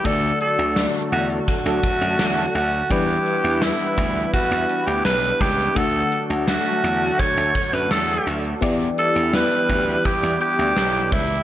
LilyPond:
<<
  \new Staff \with { instrumentName = "Alto saxophone" } { \time 4/4 \key e \minor \tempo 4 = 84 a'8 a'8 r8 fis'8 fis'4. fis'8 | g'4 e'4 fis'8. g'16 b'8 g'8 | a'8 r8 fis'4 cis''8. b'16 a'8. r16 | r8 a'8 b'4 g'8 g'4 e'8 | }
  \new Staff \with { instrumentName = "Analog polysynth" } { \time 4/4 \key e \minor r2 r16 <fis d' a'>16 r8 <fis d' a'>8 r8 | r1 | r1 | r1 | }
  \new Staff \with { instrumentName = "FM electric piano" } { \time 4/4 \key e \minor <a d' fis' d''>1 | <g d' e' b'>1 | <a d' fis' fis''>1 | <b e' g' d''>1 | }
  \new Staff \with { instrumentName = "FM electric piano" } { \clef bass \time 4/4 \key e \minor d4. r2 r8 | e4. r2 r8 | d4. r2 r8 | e4. r2 r8 | }
  \new Staff \with { instrumentName = "Analog synth pad" } { \time 4/4 \key e \minor << { <fis a fis' a'>1 | <g b e' b'>1 | <fis a fis' a'>1 | <g b e' g'>1 | } \\ { d1 | d'1~ | d'1~ | d'1 | } >> }
  \new Staff \with { instrumentName = "Slap bass" } { \clef bass \time 4/4 \key e \minor d,8 r16 d,8 r16 e,8 r16 d,16 r16 fis,16 e,8 d,8 | e,8 r16 e,8 r16 d,8 r16 e,16 r16 d,16 b,,8 cis,8 | d,8 r16 d,8 r16 e,8 r16 d,16 r16 fis,16 e,8 d,8 | e,8 r16 e,8 r16 d,8 r16 e,16 r16 d,16 b,,8 cis,8 | }
  \new DrumStaff \with { instrumentName = "Drums" } \drummode { \time 4/4 <hh bd>16 hh16 hh16 hh16 <hh sn tamb>16 hh16 hh16 hh16 <hh bd>16 hh16 <hh bd>16 hh16 <hh sn tamb>16 hh16 hho16 hh16 | <hh bd>16 hh16 hh16 hh16 <hh sn tamb>16 hh16 <hh bd>16 hh16 <hh bd>16 hh16 hh16 hh16 <hh sn tamb>16 hh16 <hho bd>16 hh16 | <hh bd>16 hh16 hh16 hh16 <hh sn tamb>16 hh16 hh16 hh16 <hh bd>16 hh16 <hh bd>16 hh16 <hh sn tamb>16 hh16 hho16 hh16 | <hh bd>16 hh16 hh16 hh16 <hh sn tamb>16 hh16 <hh bd>16 hh16 <hh bd>16 hh16 hh16 hh16 <hh sn tamb>16 hh16 <hho bd>16 hh16 | }
>>